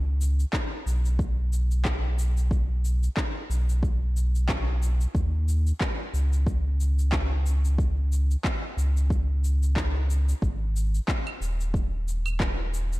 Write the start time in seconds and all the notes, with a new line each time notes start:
Already playing: C#2
0.21 shaker
0.40 shaker
0.53 kick, clap, shaker
0.86 B1, shaker
1.06 shaker
1.19 kick, shaker
1.53 shaker
1.71 shaker
1.85 kick, clap, shaker
2.19 shaker
2.37 shaker
2.51 kick, shaker
2.85 shaker
3.03 shaker
3.17 kick, clap, shaker
3.50 B1, shaker
3.69 shaker
3.83 kick, shaker
4.17 shaker
4.35 shaker
4.49 kick, clap, shaker
4.83 shaker
5.01 shaker
5.14 D#2, kick, shaker
5.49 shaker
5.67 shaker
5.81 kick, clap, shaker
6.14 C#2, shaker
6.33 shaker
6.47 kick, shaker
6.81 shaker
6.99 shaker
7.12 kick, clap, shaker
7.46 shaker
7.65 shaker
7.78 kick, shaker
8.13 shaker
8.31 shaker
8.44 kick, clap, shaker
8.77 C#2, shaker
8.97 shaker
9.10 kick, shaker
9.44 shaker
9.63 shaker
9.76 kick, clap, shaker
10.10 shaker
10.29 shaker
10.42 G#1, kick, shaker
10.76 shaker
10.95 shaker
11.08 kick, clap, shaker
11.27 claves
11.41 D#1, shaker
11.61 shaker
11.74 kick, shaker
12.08 shaker
12.26 claves, shaker
12.40 kick, clap, shaker
12.74 shaker
12.93 shaker